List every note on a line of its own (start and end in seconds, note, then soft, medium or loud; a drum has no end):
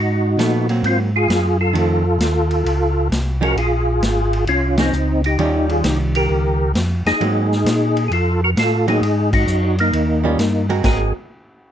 0.00 0.37 G#2 medium
0.00 0.67 D#4 medium
0.00 0.67 F#4 medium
0.38 0.82 A#2 medium
0.38 0.66 F3 medium
0.38 0.66 A3 medium
0.38 0.67 B3 medium
0.38 snare medium
0.38 hi-hat pedal medium
0.38 ride medium
0.69 1.09 F#3 medium
0.69 1.09 A#3 medium
0.69 1.09 C4 medium
0.69 ride soft
0.83 1.28 G#2 medium
0.83 0.99 C4 medium
0.83 ride medium
0.87 1.00 F4 medium
1.16 1.58 F4 medium
1.16 1.58 G#4 loud
1.29 1.73 F#2 medium
1.29 snare medium
1.29 hi-hat pedal medium
1.29 ride medium
1.61 3.08 F4 medium
1.61 3.08 A4 medium
1.73 2.18 F2 medium
1.73 2.02 D#3 medium
1.73 2.02 A3 medium
1.73 2.03 C4 medium
1.73 ride medium
2.19 2.64 D#2 loud
2.19 snare medium
2.19 hi-hat pedal medium
2.19 ride medium
2.51 ride soft
2.65 3.10 C#2 medium
2.65 ride medium
3.10 3.55 C2 medium
3.10 snare medium
3.10 hi-hat pedal medium
3.10 ride medium
3.41 3.55 F3 medium
3.41 3.55 G#3 medium
3.41 3.56 C#4 medium
3.41 3.57 F#4 medium
3.41 3.56 A#4 medium
3.41 ride soft
3.56 4.01 A#1 medium
3.56 4.45 F4 medium
3.56 4.44 G#4 medium
3.56 ride medium
4.01 4.46 G#1 loud
4.01 snare medium
4.01 hi-hat pedal medium
4.01 ride medium
4.33 ride soft
4.47 4.92 C2 medium
4.47 4.77 C#4 medium
4.47 4.77 F4 loud
4.47 ride medium
4.78 4.91 F3 medium
4.78 4.92 G#3 medium
4.78 5.22 C4 medium
4.78 4.92 C#4 medium
4.78 5.21 D#4 medium
4.78 snare medium
4.78 ride medium
4.93 5.37 C#2 medium
4.93 hi-hat pedal medium
5.24 5.67 D#4 medium
5.24 5.72 G4 medium
5.24 ride soft
5.38 5.83 D#2 medium
5.38 6.66 D#3 medium
5.38 6.67 G3 medium
5.38 6.67 C#4 medium
5.38 6.67 F4 medium
5.38 ride medium
5.69 5.84 F4 medium
5.69 5.85 G#4 medium
5.69 ride soft
5.84 6.28 C2 medium
5.84 5.99 D#4 medium
5.84 5.99 G4 medium
5.84 snare medium
5.84 hi-hat pedal medium
5.84 ride medium
6.15 6.72 G4 medium
6.15 6.72 A#4 loud
6.15 ride medium
6.29 6.74 C#2 medium
6.74 7.03 F2 medium
6.74 snare medium
6.74 hi-hat pedal soft
6.74 ride medium
7.05 7.13 F2 soft
7.05 8.04 D#4 medium
7.05 8.07 G#4 loud
7.05 snare medium
7.05 ride soft
7.20 7.65 G#2 medium
7.20 7.48 F#3 medium
7.20 7.49 A#3 medium
7.20 7.49 C4 medium
7.20 ride medium
7.52 snare soft
7.65 8.10 A#2 medium
7.65 snare medium
7.65 hi-hat pedal medium
7.65 ride medium
7.97 ride medium
8.08 8.55 F2 medium
8.08 8.12 G#4 medium
8.08 ride medium
8.13 8.41 F4 medium
8.13 8.41 A4 medium
8.44 8.50 F#4 medium
8.44 8.51 A#4 loud
8.56 9.01 A2 medium
8.56 8.87 F4 medium
8.56 8.87 A4 medium
8.56 snare medium
8.56 hi-hat pedal medium
8.56 ride medium
8.88 9.01 F#3 medium
8.88 9.01 A#3 medium
8.88 9.02 C4 medium
8.88 9.30 D#4 medium
8.88 9.31 G#4 loud
8.88 ride soft
9.01 9.46 G#2 medium
9.01 ride medium
9.33 9.76 D#4 medium
9.33 9.76 F#4 medium
9.33 kick medium
9.33 crash medium
9.47 9.92 F#2 loud
9.47 hi-hat pedal medium
9.78 10.66 A#3 medium
9.78 10.66 D#4 medium
9.78 ride soft
9.93 10.37 D#2 medium
9.93 ride medium
10.24 10.37 D#3 medium
10.24 10.38 G3 medium
10.24 10.38 C#4 medium
10.24 10.38 F4 medium
10.38 10.82 G2 medium
10.38 snare medium
10.38 hi-hat pedal medium
10.38 ride medium
10.69 10.82 G#3 medium
10.69 10.83 C4 medium
10.69 10.83 F#4 medium
10.69 10.83 A#4 medium
10.69 ride soft
10.83 11.12 G#1 medium
10.83 11.11 G#3 medium
10.83 11.11 C4 medium
10.83 11.12 F#4 medium
10.83 11.13 G#4 medium
10.83 11.12 A#4 medium
10.83 kick medium
10.83 snare medium
10.83 crash medium